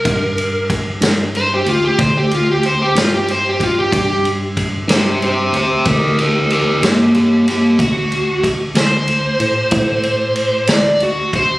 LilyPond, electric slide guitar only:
\new Staff \with { instrumentName = "Electric slide guitar" } { \time 12/8 \key g \minor \tempo 4. = 62 bes'4 r4 c''16 g'16 f'16 g'16 c''16 g'16 f'16 g'16 c''16 g'16 f'16 g'16 c''16 g'16 f'16 g'16 | g'8 r4 <g' c''>8 <g' c''>8 <g' c''>8 <g' bes'>8 <g' bes'>8 <g' bes'>8 <bes g'>8 <bes g'>8 <bes g'>8 | fis'4 r8 c''2. d''8 fis'8 c''8 | }